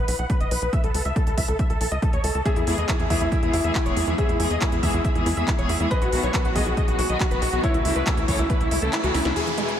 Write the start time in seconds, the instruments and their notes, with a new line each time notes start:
0.08 analog synth bass B1, supersaw synth B4, open hi-hat
0.19 analog synth bass B1, supersaw synth F#5, closed hi-hat
0.30 supersaw synth B4, kick, closed hi-hat
0.40 analog synth bass F#1, supersaw synth D#5, closed hi-hat
0.51 analog synth bass B1, supersaw synth B4, open hi-hat
0.62 analog synth bass B1, supersaw synth B4, closed hi-hat
0.73 supersaw synth E5, kick, closed hi-hat
0.84 analog synth bass C#2, supersaw synth A4, closed hi-hat
0.94 analog synth bass C#2, supersaw synth A4, open hi-hat
1.05 analog synth bass C#2, supersaw synth E5, closed hi-hat
1.16 supersaw synth A4, kick, closed hi-hat
1.27 analog synth bass C#2, supersaw synth A4, closed hi-hat
1.37 analog synth bass C#2, supersaw synth E5, kick, open hi-hat
1.48 analog synth bass C#2, supersaw synth A4, closed hi-hat
1.59 supersaw synth E5, kick, closed hi-hat
1.70 analog synth bass C#2, supersaw synth A4, closed hi-hat
1.81 analog synth bass B1, supersaw synth A4, open hi-hat
1.92 analog synth bass C#2, supersaw synth D#5, closed hi-hat
2.02 supersaw synth A4, kick, closed hi-hat
2.13 analog synth bass D#2, supersaw synth C#5, closed hi-hat
2.24 analog synth bass C#2, supersaw synth A4, open hi-hat
2.35 analog synth bass C#2, supersaw synth A4
2.45 string section E3 G#3 B3 G#4, felt piano G#4, supersaw synth E5, kick, closed hi-hat
2.56 analog synth bass E2, supersaw synth E4, closed hi-hat
2.67 analog synth bass E2, string section E3 G#3 B3 G#4, supersaw synth E4, open hi-hat
2.78 analog synth bass E2, supersaw synth D#5, closed hi-hat
2.89 string section E3 G#3 B3 G#4, supersaw synth E4, kick, clap, closed hi-hat
2.99 analog synth bass E2, supersaw synth E4, closed hi-hat
3.10 analog synth bass E2, string section E3 G#3 B3 G#4, felt piano E4, supersaw synth E5, kick, open hi-hat
3.21 analog synth bass E2, supersaw synth E4
3.32 string section E3 G#3 B3 G#4, supersaw synth E5, kick, closed hi-hat
3.43 analog synth bass E2, string section E3 G#3 B3 G#4, supersaw synth E4, closed hi-hat
3.53 analog synth bass E2, felt piano E4, supersaw synth E4, open hi-hat
3.64 analog synth bass E2, string section E3 G#3 B3 G#4, supersaw synth E5, closed hi-hat
3.75 supersaw synth E4, kick, clap, closed hi-hat
3.86 analog synth bass E1, string section E3 G#3 B3 G#4, supersaw synth C#5, closed hi-hat
3.97 analog synth bass E2, supersaw synth E4, open hi-hat
4.07 analog synth bass E2, string section E3 G#3 B3 G#4, supersaw synth E4, closed hi-hat
4.18 string section E3 G#3 B3 G#4, felt piano G#4, supersaw synth E5, kick, closed hi-hat
4.29 analog synth bass E2, supersaw synth E4, closed hi-hat
4.40 analog synth bass E2, string section E3 G#3 B3 G#4, supersaw synth E4, open hi-hat
4.51 analog synth bass E2, supersaw synth D#5, closed hi-hat
4.61 string section E3 G#3 B3 G#4, supersaw synth E4, kick, clap, closed hi-hat
4.72 analog synth bass E2, supersaw synth E4, closed hi-hat
4.83 analog synth bass E2, string section E3 G#3 B3 G#4, supersaw synth E5, kick, open hi-hat
4.94 analog synth bass E2, supersaw synth E4, closed hi-hat
5.04 string section E3 G#3 B3 G#4, supersaw synth E5, kick, closed hi-hat
5.15 analog synth bass E2, string section E3 G#3 B3 G#4, supersaw synth E4, closed hi-hat
5.26 analog synth bass E2, supersaw synth E4, open hi-hat
5.37 analog synth bass E2, string section E3 G#3 B3 G#4, supersaw synth E5, closed hi-hat
5.48 supersaw synth E4, kick, clap, closed hi-hat
5.58 analog synth bass E1, string section E3 G#3 B3 G#4, supersaw synth C#5, closed hi-hat
5.69 analog synth bass E2, supersaw synth E4, open hi-hat
5.80 analog synth bass E2, string section E3 G#3 B3 G#4, supersaw synth E4, closed hi-hat
5.91 string section D#3 F#3 B3 F#4, felt piano B4, supersaw synth D#5, kick, closed hi-hat
6.02 analog synth bass B1, supersaw synth F#4, closed hi-hat
6.12 analog synth bass B1, string section D#3 F#3 B3 F#4, supersaw synth F#4, open hi-hat
6.23 analog synth bass B1, supersaw synth C#5, closed hi-hat
6.34 string section D#3 F#3 B3 F#4, supersaw synth F#4, kick, clap, closed hi-hat
6.45 analog synth bass B1, supersaw synth F#4, closed hi-hat
6.55 analog synth bass B1, string section D#3 F#3 B3 F#4, felt piano G#4, supersaw synth D#5, kick, open hi-hat
6.66 analog synth bass B1, supersaw synth F#4, closed hi-hat
6.77 string section D#3 F#3 B3 F#4, supersaw synth D#5, kick, closed hi-hat
6.88 analog synth bass B1, string section D#3 F#3 B3 F#4, supersaw synth F#4, closed hi-hat
6.99 analog synth bass B1, felt piano F#4, supersaw synth F#4, open hi-hat
7.10 analog synth bass B1, string section D#3 F#3 B3 F#4, supersaw synth D#5, closed hi-hat
7.20 supersaw synth F#4, kick, clap, closed hi-hat
7.31 analog synth bass F#1, string section D#3 F#3 B3 F#4, supersaw synth B4, closed hi-hat
7.42 analog synth bass B1, supersaw synth F#4, open hi-hat
7.53 analog synth bass B1, string section D#3 F#3 B3 F#4, supersaw synth F#4, closed hi-hat
7.63 string section C#3 E3 A3 E4, felt piano E4, supersaw synth C#5, kick, closed hi-hat
7.74 analog synth bass C#2, supersaw synth E4, closed hi-hat
7.85 analog synth bass C#2, string section C#3 E3 A3 E4, supersaw synth E4, open hi-hat
7.96 analog synth bass C#2, supersaw synth B4, closed hi-hat
8.07 string section C#3 E3 A3 E4, supersaw synth E4, kick, clap, closed hi-hat
8.17 analog synth bass C#2, supersaw synth E4, closed hi-hat
8.28 analog synth bass C#2, string section C#3 E3 A3 E4, supersaw synth C#5, kick, open hi-hat
8.39 analog synth bass C#2, supersaw synth E4, closed hi-hat
8.50 string section C#3 E3 A3 E4, supersaw synth B4, kick, closed hi-hat
8.61 analog synth bass C#2, string section C#3 E3 A3 E4, supersaw synth E4, closed hi-hat
8.71 analog synth bass C#2, supersaw synth E4, open hi-hat
8.82 analog synth bass C#2, string section C#3 E3 A3 E4, supersaw synth A4, closed hi-hat
8.93 supersaw synth E4, clap, closed hi-hat
9.04 analog synth bass C#2, string section C#3 E3 A3 E4, supersaw synth F#4, closed hi-hat
9.14 analog synth bass C#2, supersaw synth E4, snare, open hi-hat
9.25 analog synth bass C#2, string section C#3 E3 A3 E4, supersaw synth E4, snare, closed hi-hat
9.36 analog synth bass E2, string section B2 E3 G#3 E4, felt piano G#4, closed hi-hat, downlifter
9.47 synth arpeggio sound E3, closed hi-hat
9.58 string section B2 E3 G#3 E4, synth arpeggio sound G#3, closed hi-hat
9.68 closed hi-hat